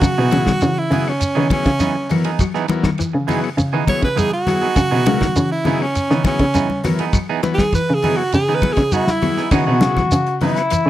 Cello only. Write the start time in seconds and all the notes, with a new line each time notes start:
0.02 C#3
0.18 B2
0.33 C#3
0.62 C#3
0.91 C#3
1.37 C#3
1.66 C#3
1.80 C#3
2.10 E3
3.14 C#3
3.57 C#3
4.02 C#3
4.77 C#3
4.92 B2
5.07 C#3
5.36 C#3
5.66 C#3
6.11 C#3
6.40 C#3
6.55 C#3
6.84 E3
7.90 C#3
8.34 C#3
8.77 C#3
9.52 C#3
9.68 B2
9.81 C#3
10.12 C#3
10.42 C#3
10.86 C#3